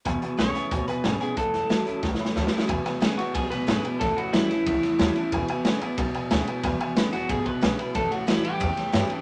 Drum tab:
RD |------------------------|------------------------|x--x--x--x--x--x--x--x--|x--x--x--x--x--x--x--x--|
HH |x--x--x--x--x--x--x--x--|x--x--x--x--------------|------------------------|------------------------|
SD |------o--o--------o-----|---o--o-----o-o-o-o-o-o-|---o--o--o-----o--o-----|o-----o--o-----o--o-----|
BD |o-----------o-----------|o-----------o-----------|o-----------o-----------|o-----------o-----------|

RD |x--x--x--x--x--x--x--x--|x--x--x--x--x--x--x--x--|x--x--x--x--x--x--x--x--|
HH |------------------------|------------------------|------------------------|
SD |------o-----------o-----|o-----o--o--------o-----|o-----o--------o--o-----|
BD |o-----------o-----------|o-----------o--o--------|o-----------o-----------|